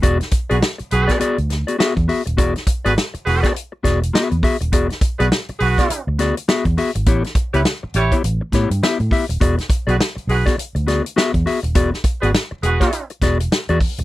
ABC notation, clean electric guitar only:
X:1
M:4/4
L:1/16
Q:"Swing 16ths" 1/4=102
K:Emix
V:1 name="Clean electric guitar"
[B,FGd] z2 [B,FGd] z3 [B,FGd] [B,FGd] z2 [B,FGd] [B,FGe] z [B,FGe] z | [B,FGd] z2 [B,FGd] z3 [B,FGd] z2 [B,FGd] z [B,FGe] z [B,FGe] z | [B,FGd] z2 [B,FGd] z3 [B,FGd] z2 [B,FGd] z [B,FGe] z [B,FGe] z | [B,E=Gc] z2 [B,EGc] z3 [B,EGc] z2 [B,EGc] z [B,EGe] z [B,EGe] z |
[B,FGd] z2 [B,FGd] z3 [B,FGd] z2 [B,FGd] z [B,FGe] z [B,FGe] z | [B,FGd] z2 [B,FGd] z3 [B,FGd] z2 [B,FGd] z2 [B,FGd] z2 |]